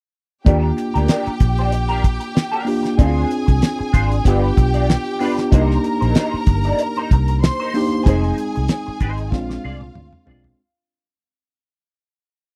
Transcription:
0.45 D#2 A#3 D4 F4 G4 A#4 G5, kick, closed hi-hat
0.77 muted clean electric guitar stroke, closed hi-hat
0.94 D2 D4 G4 A#4, closed hi-hat
1.08 D4 G4 A#4, snare, closed hi-hat
1.26 muted fingered electric bass stroke, closed hi-hat
1.40 A#1, muted clean electric guitar stroke, kick, closed hi-hat
1.58 D4 G4 C5, closed hi-hat
1.72 muted clean electric guitar stroke, closed hi-hat
1.89 D4 G4 A#4, closed hi-hat
2.03 muted clean electric guitar stroke, kick, closed hi-hat
2.20 muted clean electric guitar stroke, closed hi-hat
2.35 muted clean electric guitar stroke, snare, closed hi-hat
2.52 D4 G4 A#4
2.65 A#3 D4 F4 G4, muted clean electric guitar stroke, open hi-hat
2.83 muted clean electric guitar stroke, snare, closed hi-hat
2.98 D2 C4 D4 E4 F4 G#4 C5 G#5, kick, closed hi-hat
3.07 F4
3.31 closed hi-hat
3.46 C2, muted clean electric guitar stroke, kick, closed hi-hat
3.61 muted clean electric guitar stroke, snare, closed hi-hat
3.79 muted clean electric guitar stroke, muted fingered electric bass stroke
3.93 G#1 D4 F4 C5, kick, closed hi-hat
4.11 muted clean electric guitar stroke, closed hi-hat
4.25 G1 B3 D4 F4 G4 B4 G5, kick, closed hi-hat
4.57 B1, muted clean electric guitar stroke, kick, closed hi-hat
4.74 D4 F4 D5, closed hi-hat
4.89 muted clean electric guitar stroke, snare, closed hi-hat
5.19 B3 D4 F4 B4, open hi-hat
5.24 G4
5.37 muted clean electric guitar stroke, snare, closed hi-hat
5.51 C2 A#3 D4 D#4 F#4 A#4 C5 A#5, kick, closed hi-hat
5.61 G4
5.71 snare
5.84 muted clean electric guitar stroke, closed hi-hat
6.01 A#1 D#4 A#4 C5, closed hi-hat
6.15 D#4 A#4 C5, snare, closed hi-hat
6.34 muted fingered electric bass stroke
6.47 G1, muted clean electric guitar stroke, kick, closed hi-hat
6.64 D#4 A#4 D5, closed hi-hat
6.79 muted clean electric guitar stroke, closed hi-hat
6.96 D#4 A#4 C5, closed hi-hat
7.11 C2, muted clean electric guitar stroke, kick, closed hi-hat
7.28 muted clean electric guitar stroke, closed hi-hat
7.42 C5 C6, muted clean electric guitar stroke, snare, closed hi-hat
7.60 D#4 A#4 C5
7.74 A#3 D4 D#4 G4, muted clean electric guitar stroke, open hi-hat
7.92 muted clean electric guitar stroke, closed hi-hat
8.05 F1 G#3 C4 D#4 G#4 C5 G#5, kick, closed hi-hat
8.24 closed hi-hat
8.38 closed hi-hat
8.55 C2, muted clean electric guitar stroke, closed hi-hat
8.68 muted clean electric guitar stroke, snare, closed hi-hat
8.87 muted clean electric guitar stroke, muted fingered electric bass stroke
9.00 G#1 D#4 G#4 C5, kick, closed hi-hat
9.18 muted clean electric guitar stroke, closed hi-hat
9.31 A#1 G#3 C4 D4 F4 F5, muted clean electric guitar stroke, kick, snare
9.50 muted clean electric guitar stroke, snare
9.64 C2 F4 G#4 D5
9.81 muted clean electric guitar stroke, high tom
9.95 D2, muted clean electric guitar stroke, mid tom
10.13 mid tom
10.26 B1 G#3 C4 D4 F4 G#4 D5, floor tom
10.44 muted clean electric guitar stroke, floor tom

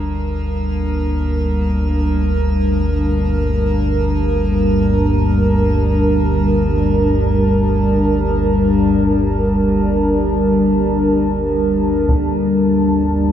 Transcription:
Already playing: G1 D2 G3 A#3 D4 A#4 A5
12.09 G1 D2, taiko

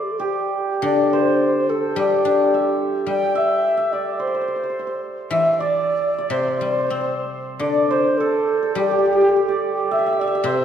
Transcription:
Already playing: E3 C5 D5 E5
0.03 G4
0.11 A4
0.19 G4
0.82 D3 D5
1.03 D5
1.13 C5
1.69 A4
1.96 G3 G4
2.25 D4
2.54 E5
3.07 G3 G5
3.35 E5
3.77 E5
3.92 D5
4.19 C5
4.27 C5
4.34 C5
4.41 C5
4.48 C5
4.56 C5
4.63 C5
4.70 C5
4.79 C5
4.87 C5
5.31 E3 E5
5.53 E5
5.59 D5
6.18 D5
6.30 C3 C5
6.40 C5
6.48 C5
6.57 G3 C5
6.66 C5
6.72 C5
6.79 C5
6.87 C4 C5
6.94 C5
7.01 C5
7.59 D3 D5
7.90 C5
8.18 A4
8.63 A4
8.75 G3 G4
8.84 A4
8.88 G4
8.98 G4
9.06 G4
9.13 G4
9.21 G4
9.28 G4
9.36 G4
9.48 D5
9.91 E5
9.99 E5
10.06 E5
10.13 E5
10.19 D5 E5
10.27 E5
10.35 E5
10.40 C3 D5
10.46 C5

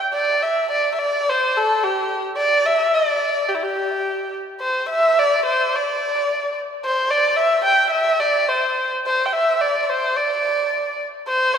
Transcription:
0.14 D5
0.42 E5
0.72 D5
0.94 E5
0.99 D5
1.29 C5
1.57 A4
1.83 G4
2.37 D5
2.66 E5
2.93 D5
3.48 G4
3.55 E4
3.63 G4
4.61 C5
4.90 E5
5.19 D5
5.46 C5
5.76 D5
6.85 C5
7.10 D5
7.36 E5
7.65 G5
7.91 E5
8.20 D5
8.48 C5
9.06 C5
9.26 G5
9.33 E5
9.61 D5
9.82 D5
9.89 C5
10.17 D5
11.27 C5
11.54 E5

